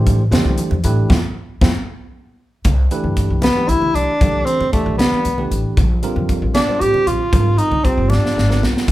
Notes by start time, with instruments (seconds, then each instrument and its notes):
Already playing: upright bass A2, tine electric piano E3 A3 D4 G4 C5
0.07 kick, closed hi-hat, high conga
0.21 low conga
0.31 upright bass F2, tine electric piano E3 A3 D4 G4 C5, snare, closed hi-hat, low conga
0.44 upright bass C2
0.58 closed hi-hat, high conga
0.71 upright bass F2, low conga
0.84 upright bass A2, tine electric piano E3 A3 D4 G4 B4, closed hi-hat
1.10 upright bass F2, tine electric piano C4 E4 F4, kick, snare, high conga
1.61 upright bass F2, tine electric piano C4 E4 F4, kick, snare, high conga
2.65 upright bass C2, kick, closed hi-hat, high conga, low conga
2.91 tine electric piano E3 A3 D4 G4 B4, closed hi-hat, low conga
3.04 upright bass G2, low conga
3.17 kick, closed hi-hat
3.30 upright bass C2
3.42 tenor saxophone B3, snare, closed hi-hat, high conga, low conga
3.55 tine electric piano E3 A3 D4 G4 B4, muted upright bass stroke
3.68 upright bass B1, tenor saxophone E4, closed hi-hat, low conga
3.81 muted upright bass stroke, low conga
3.94 upright bass C2, tenor saxophone D4, closed hi-hat
4.21 upright bass C2, tine electric piano E3 A3 D4 G4 A4, kick, closed hi-hat, high conga, low conga
4.45 tenor saxophone C4, closed hi-hat, low conga
4.60 upright bass E2, low conga
4.72 tine electric piano E3 A3 D4 G4 D5, tenor saxophone A3, kick, closed hi-hat
4.86 upright bass C2
4.98 tenor saxophone B3, snare, closed hi-hat, high conga, low conga
5.12 muted upright bass stroke
5.25 upright bass C2, closed hi-hat
5.38 tine electric piano E3 A3 D4 G4 B4, low conga
5.51 upright bass A1, closed hi-hat, low conga
5.77 upright bass A#1, kick, closed hi-hat, high conga, low conga
6.02 tine electric piano D3 G3 C4 F4 A#4, closed hi-hat, low conga
6.16 upright bass F2, low conga
6.29 kick, closed hi-hat
6.42 upright bass A#1
6.55 tenor saxophone D4, snare, closed hi-hat, high conga, low conga
6.67 tine electric piano D3 G3 C4 F4 C5, muted upright bass stroke
6.81 upright bass A1, tenor saxophone G4, closed hi-hat, low conga
6.94 muted upright bass stroke, low conga
7.06 upright bass A#1, tenor saxophone F4, closed hi-hat, low conga
7.33 upright bass G#1, tine electric piano D3 G3 C4 F4 A#4, kick, closed hi-hat, high conga, low conga
7.46 low conga
7.58 tenor saxophone D#4, closed hi-hat
7.71 upright bass C2, low conga
7.84 tine electric piano D3 G3 C4 F4 G4, tenor saxophone C4, kick, closed hi-hat
7.97 upright bass G#1
8.09 tenor saxophone D4, snare, high conga, low conga
8.23 muted upright bass stroke, snare, low conga
8.36 upright bass G#1, snare, low conga
8.49 tine electric piano D3 G3 C4 F4 A#4, snare, low conga
8.62 upright bass B1, snare
8.77 snare
8.88 upright bass C2, kick, closed hi-hat, high conga, low conga